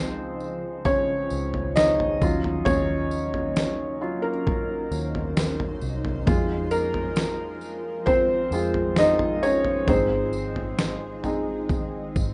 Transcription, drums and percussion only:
0.40 tambourine soft
0.85 kick medium
0.85 floor tom medium
0.85 tambourine soft
1.30 tambourine medium
1.54 floor tom medium
1.76 snare loud
1.76 tambourine medium
2.00 floor tom medium
2.22 kick loud
2.22 tambourine soft
2.44 floor tom medium
2.66 floor tom loud
2.66 tambourine soft
3.11 tambourine medium
3.34 floor tom medium
3.56 snare loud
3.56 tambourine medium
4.47 kick medium
4.47 floor tom medium
4.92 tambourine medium
5.15 floor tom medium
5.37 snare loud
5.37 tambourine medium
5.60 floor tom medium
5.82 tambourine soft
6.05 floor tom medium
6.27 kick loud
6.27 floor tom loud
6.27 tambourine soft
6.71 tambourine medium
6.94 floor tom medium
7.16 snare loud
7.16 tambourine medium
7.61 tambourine soft
8.06 kick medium
8.06 floor tom medium
8.06 tambourine soft
8.52 tambourine medium
8.74 floor tom medium
8.96 snare loud
8.96 tambourine medium
9.19 floor tom medium
9.43 tambourine medium
9.65 floor tom medium
9.88 kick loud
9.88 floor tom loud
9.88 tambourine soft
10.33 tambourine soft
10.56 floor tom medium
10.79 snare loud
10.79 tambourine medium
11.24 floor tom medium
11.24 tambourine soft
11.69 kick medium
11.69 floor tom medium
11.69 tambourine soft
12.16 kick medium
12.16 tambourine medium

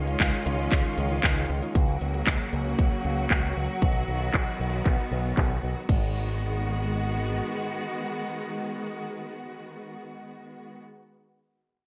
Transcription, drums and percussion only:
0.07 closed hi-hat soft
0.20 kick loud
0.20 clap loud
0.20 closed hi-hat medium
0.33 closed hi-hat soft
0.46 closed hi-hat medium
0.59 closed hi-hat soft
0.72 kick loud
0.72 clap medium
0.72 closed hi-hat medium
0.85 closed hi-hat soft
0.98 closed hi-hat medium
1.11 closed hi-hat soft
1.23 kick loud
1.23 clap loud
1.23 closed hi-hat medium
1.37 closed hi-hat soft
1.49 closed hi-hat soft
1.62 closed hi-hat soft
1.75 kick loud
1.75 closed hi-hat medium
1.88 closed hi-hat soft
2.01 closed hi-hat medium
2.14 closed hi-hat soft
2.27 kick loud
2.27 clap loud
2.27 closed hi-hat medium
2.40 closed hi-hat soft
2.53 closed hi-hat medium
2.66 closed hi-hat soft
2.79 kick loud
2.79 closed hi-hat medium
2.92 closed hi-hat soft
3.05 closed hi-hat medium
3.18 closed hi-hat soft
3.30 kick loud
3.30 clap loud
3.30 closed hi-hat medium
3.43 closed hi-hat soft
3.56 closed hi-hat soft
3.69 closed hi-hat soft
3.82 kick loud
3.82 closed hi-hat medium
3.95 closed hi-hat soft
4.08 closed hi-hat medium
4.21 closed hi-hat soft
4.34 kick loud
4.34 clap loud
4.60 closed hi-hat medium
4.86 kick loud
4.86 clap medium
5.12 closed hi-hat medium
5.37 kick loud
5.37 clap loud
5.89 kick loud
5.89 crash medium

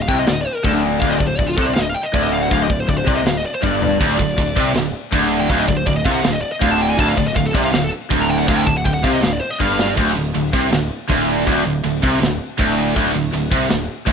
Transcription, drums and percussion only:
0.08 kick loud
0.27 snare loud
0.27 china medium
0.64 kick loud
0.64 china medium
1.02 kick loud
1.02 china medium
1.02 crash loud
1.20 kick medium
1.39 kick loud
1.39 china medium
1.58 kick loud
1.76 snare loud
1.76 china medium
2.14 kick loud
2.14 china medium
2.51 kick loud
2.51 china medium
2.70 kick loud
2.89 kick loud
2.89 china medium
3.07 kick loud
3.26 snare loud
3.26 china medium
3.63 kick medium
3.82 floor tom loud
4.01 kick loud
4.01 china medium
4.01 crash loud
4.19 kick medium
4.38 kick loud
4.38 china medium
4.57 kick loud
4.75 snare loud
4.75 china medium
5.12 kick loud
5.12 china medium
5.50 kick loud
5.50 china medium
5.68 kick medium
5.87 kick loud
5.87 china medium
6.05 kick loud
6.24 snare loud
6.24 china medium
6.62 kick loud
6.62 china medium
6.99 kick loud
6.99 china medium
6.99 crash loud
7.17 kick medium
7.36 kick loud
7.36 china medium
7.55 kick loud
7.73 snare loud
7.73 china medium
8.11 kick loud
8.11 china medium
8.48 kick loud
8.48 china medium
8.67 kick medium
8.85 kick medium
8.85 china medium
9.04 kick loud
9.23 snare loud
9.23 china medium
9.60 kick medium
9.79 snare loud
9.97 kick medium
9.97 crash loud
9.97 china medium
10.35 china medium
10.53 kick loud
10.72 snare loud
10.72 china medium
11.10 kick loud
11.10 china medium
11.47 kick medium
11.47 china medium
11.85 china medium
12.03 kick loud
12.23 snare loud
12.23 china medium
12.59 kick loud
12.59 china medium
12.96 kick loud
12.96 crash loud
12.96 china medium
13.34 china medium
13.52 kick loud
13.70 snare loud
13.70 china medium
14.07 kick loud
14.07 china medium

